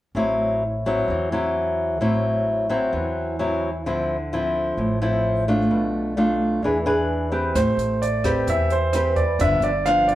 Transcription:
0.15 A1 A2 F#3 C4 E4
0.86 F#3 C4 E4
1.08 E2 E3
1.32 F#3 C4 E4
2.01 A1 A2 F#3 C4 E4
2.69 F#3 C4 E4
2.92 E2 E3
3.39 F#3 C4 E4
3.85 D2 D3 F3 C4 E4
4.33 F3 C4 E4
4.77 A1 A2
5.02 F3 C4 E4
5.48 A3 D4 F4
5.70 B1 B2
6.17 A3 D4 F4
6.63 E2 E3 D4 G#4 B4
6.86 D4 G#4 B4
7.32 C4 G4 B4
7.55 A1 A3 C5, kick, cross-stick, closed hi-hat
7.77 A1, closed hi-hat
8.02 D5, closed hi-hat
8.24 C4 G4 B4, kick, cross-stick, closed hi-hat
8.47 E2 E3 E5, kick, closed hi-hat
8.70 C5, closed hi-hat
8.93 C4 G4 B4, cross-stick, closed hi-hat
9.16 D5, kick, closed hi-hat
9.39 G1 G2 F3 B3 D4 E5, kick, closed hi-hat
9.60 G1 D5, closed hi-hat
9.86 F3 B3 D4 F5, cross-stick, closed hi-hat
10.08 D5, closed hi-hat

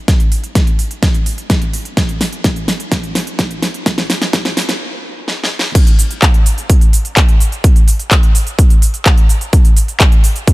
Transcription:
0.08 kick, snare, closed hi-hat
0.20 closed hi-hat
0.32 open hi-hat
0.44 closed hi-hat
0.55 kick, snare, closed hi-hat
0.67 closed hi-hat
0.79 open hi-hat
0.91 closed hi-hat
1.03 kick, snare, closed hi-hat
1.14 closed hi-hat
1.26 open hi-hat
1.38 closed hi-hat
1.50 kick, snare, closed hi-hat
1.62 closed hi-hat
1.73 open hi-hat
1.85 closed hi-hat
1.97 kick, snare, closed hi-hat
2.09 closed hi-hat
2.21 snare, open hi-hat
2.33 closed hi-hat
2.44 kick, snare, closed hi-hat
2.56 closed hi-hat
2.68 snare, open hi-hat
2.80 closed hi-hat
2.92 kick, snare, closed hi-hat
3.03 closed hi-hat
3.15 snare, open hi-hat
3.27 closed hi-hat
3.39 kick, snare, closed hi-hat
3.51 closed hi-hat
3.62 snare, open hi-hat
3.74 closed hi-hat
3.86 kick, snare, closed hi-hat
3.98 snare, closed hi-hat
4.10 snare, open hi-hat
4.22 snare, closed hi-hat
4.33 kick, snare, closed hi-hat
4.45 snare, closed hi-hat
4.57 snare, open hi-hat
4.69 snare, closed hi-hat
5.28 snare
5.44 snare
5.59 snare
5.75 kick, closed hi-hat, crash, shaker
5.87 closed hi-hat, shaker
5.99 open hi-hat, shaker
6.11 closed hi-hat, shaker
6.22 kick, clap, closed hi-hat, shaker
6.34 closed hi-hat
6.46 open hi-hat, shaker
6.58 closed hi-hat, shaker
6.70 kick, closed hi-hat, shaker
6.81 closed hi-hat, shaker
6.93 open hi-hat, shaker
7.05 closed hi-hat, shaker
7.17 kick, clap, closed hi-hat, shaker
7.29 closed hi-hat
7.40 open hi-hat, shaker
7.52 closed hi-hat, shaker
7.64 kick, closed hi-hat, shaker
7.76 closed hi-hat, shaker
7.88 open hi-hat, shaker
7.99 closed hi-hat, shaker
8.11 kick, clap, closed hi-hat, shaker
8.23 closed hi-hat
8.35 open hi-hat, shaker
8.47 closed hi-hat, shaker
8.59 kick, closed hi-hat, shaker
8.70 closed hi-hat, shaker
8.82 open hi-hat, shaker
8.94 closed hi-hat, shaker
9.06 kick, clap, closed hi-hat, shaker
9.18 closed hi-hat
9.29 open hi-hat, shaker
9.41 closed hi-hat, shaker
9.53 kick, closed hi-hat, shaker
9.65 closed hi-hat, shaker
9.77 open hi-hat, shaker
9.88 closed hi-hat, shaker
10.00 kick, clap, closed hi-hat, shaker
10.12 closed hi-hat
10.24 open hi-hat, shaker
10.36 closed hi-hat, shaker
10.47 kick, closed hi-hat, shaker

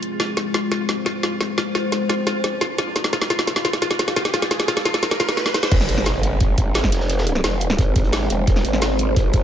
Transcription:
Already playing: G#3 C4 F4 G#4
0.03 closed hi-hat
0.20 F4 C5, snare, closed hi-hat, riser
0.37 snare, closed hi-hat
0.54 F4, snare, closed hi-hat
0.72 F4, snare, closed hi-hat
0.89 snare, closed hi-hat
1.06 F4, snare, closed hi-hat
1.23 F4, snare, closed hi-hat
1.41 snare, closed hi-hat
1.58 F4, snare, closed hi-hat
1.75 F4, snare, closed hi-hat
1.92 snare, closed hi-hat
2.09 F4, snare, closed hi-hat
2.27 F4, snare, closed hi-hat
2.44 snare, closed hi-hat
2.61 F4, snare, closed hi-hat
2.78 F4, snare, closed hi-hat
2.96 F5, snare, closed hi-hat
3.04 snare
3.13 F4, snare, closed hi-hat
3.22 snare
3.30 F4, snare, closed hi-hat
3.39 snare
3.47 snare, closed hi-hat
3.56 snare
3.65 F4, snare, closed hi-hat
3.73 snare
3.82 F4, snare, closed hi-hat
3.91 snare
3.99 snare, closed hi-hat
4.08 snare
4.16 F4, snare, closed hi-hat
4.25 snare
4.34 F4, snare, closed hi-hat
4.42 snare
4.51 snare, closed hi-hat
4.60 snare
4.68 F4, snare, closed hi-hat
4.77 snare
4.85 F4, snare, closed hi-hat
4.94 snare
5.03 snare, closed hi-hat
5.11 snare
5.20 F4, snare, closed hi-hat
5.29 snare
5.37 snare
5.46 snare
5.54 snare
5.63 snare
5.71 F1 G#3 C4 F4 C5, kick, closed hi-hat, crash, impact
5.80 snare
5.89 G#1, closed hi-hat
5.97 snare
6.06 snare, closed hi-hat
6.23 closed hi-hat
6.40 G#1, kick, closed hi-hat
6.58 kick, closed hi-hat
6.74 snare, closed hi-hat
6.83 kick, snare
6.92 F1, snare, closed hi-hat
7.00 snare
7.10 closed hi-hat
7.18 snare
7.27 closed hi-hat
7.35 snare
7.44 F1, snare, closed hi-hat
7.61 closed hi-hat
7.70 snare
7.78 G#1, kick, closed hi-hat
7.96 kick, closed hi-hat
8.04 closed hi-hat
8.12 snare, closed hi-hat
8.21 snare
8.30 F1, closed hi-hat
8.47 F1, kick, closed hi-hat
8.55 snare
8.65 G#1, closed hi-hat
8.73 snare
8.81 snare, closed hi-hat
8.99 closed hi-hat
9.16 G#1, kick, closed hi-hat
9.33 kick, closed hi-hat

